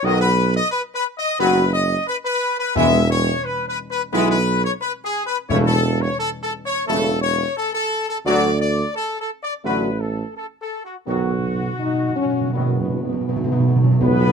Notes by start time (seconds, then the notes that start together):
0.03 B1 D#3 F#3 B3 F#4 D#5
0.20 B4
0.55 D#5
0.70 B4
0.93 B4
1.16 D#5
1.38 F#1 D#3 F#3 B3 F#4 B4
1.72 D#5
2.07 B4
2.23 B4
2.58 B4
2.75 E1 E2 E3 G#3 B3 E4 E5
3.09 C#5
3.42 B4
3.67 B4
3.90 B4
4.12 B1 E3 G#3 B3 E4 B4
4.29 B4
4.64 C#5
4.80 B4
5.03 G#4
5.25 B4
5.47 E1 E2 C#3 A3 E4 C#5
5.64 A4
6.01 C#5
6.18 A4
6.41 A4
6.64 C#5
6.87 E1 C#3 A3 E4 A4
7.21 C#5
7.56 A4
7.73 A4
8.08 A4
8.25 D2 D3 F#3 A3 F#4 D5
8.60 D5
8.94 A4
9.19 A4
9.42 D5
9.64 A1 D3 F#3 A3 F#4 B4
10.00 A4
10.34 A4
10.60 A4
10.84 F#4
11.06 B1 B2 D#3 F#3 B3 F#4
11.15 B2
11.31 B2
11.39 B2
11.47 B2
11.55 B2
11.63 B2
11.71 B2
11.78 B2 D#4
11.86 B2
11.94 B2
12.03 B2
12.10 B2
12.16 B2 C#4
12.26 B2
12.33 B2
12.41 B2
12.49 B2
12.53 F#1 D#3 F#3 B3
12.58 B2
12.66 B2
12.73 B2
12.79 B2 B3
12.89 B2
12.97 B2
13.03 B2 B3
13.13 B2
13.21 B2
13.27 B2 B3
13.37 B2
13.44 B2 B3
13.52 B2
13.60 B2
13.68 B2
13.76 B2
13.84 B2 C#4
13.91 B2
14.00 B1 E2 B3 B4, tam-tam